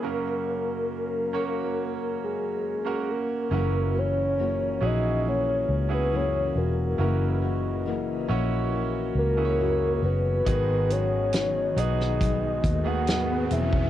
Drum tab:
HH |----------------|----------------|----------------|x-x-x-x-x-x-x-x-|
SD |----------------|----------------|----------------|----o--o----o---|
BD |----------------|----------------|----------------|o-------o-o----o|